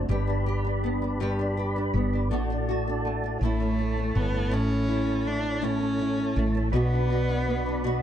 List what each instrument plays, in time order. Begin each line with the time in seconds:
Already playing: nylon-string guitar C4 D4
0.09 fretless electric bass G1, nylon-string guitar G2 G4, tonewheel organ G4 B4 D5 B5
0.27 nylon-string guitar D4
0.46 nylon-string guitar G4
0.64 nylon-string guitar D4
0.84 nylon-string guitar B3
1.02 nylon-string guitar D4
1.20 nylon-string guitar G2 G4
1.39 nylon-string guitar D4
1.57 nylon-string guitar G4
1.76 nylon-string guitar D4
1.93 fretless electric bass G1, nylon-string guitar B3
2.13 nylon-string guitar D4
2.30 fretless electric bass A1, nylon-string guitar A2 F#4, tonewheel organ F#4 A4 A5
2.50 nylon-string guitar D4
2.69 nylon-string guitar F#4
2.87 nylon-string guitar D4
3.05 nylon-string guitar A3
3.24 nylon-string guitar D4
3.39 fretless electric bass A1, nylon-string guitar A2, cello A3, tonewheel organ E4 C#5 A5
3.43 nylon-string guitar E4
3.60 nylon-string guitar C#4
3.79 nylon-string guitar E4
3.97 nylon-string guitar C#4
4.15 fretless electric bass G1, nylon-string guitar A3, cello B3
4.34 nylon-string guitar C#4
4.51 fretless electric bass A1, nylon-string guitar A2 E4, cello C#4
4.70 nylon-string guitar C#4
4.88 nylon-string guitar E4
5.07 nylon-string guitar C#4
5.25 nylon-string guitar A3, cello D4
5.43 nylon-string guitar C#4
5.62 nylon-string guitar A2 E4, cello C#4
5.80 nylon-string guitar C#4
5.99 nylon-string guitar E4
6.17 nylon-string guitar C#4
6.36 fretless electric bass A1, nylon-string guitar A3, cello A3
6.55 nylon-string guitar C#4
6.72 fretless electric bass B1, nylon-string guitar B2 F#4, cello B3, tonewheel organ F#4 B4 D5 B5
6.93 nylon-string guitar D4
7.10 nylon-string guitar F#4
7.29 nylon-string guitar D4
7.48 nylon-string guitar B3
7.66 nylon-string guitar D4
7.84 nylon-string guitar B2 F#4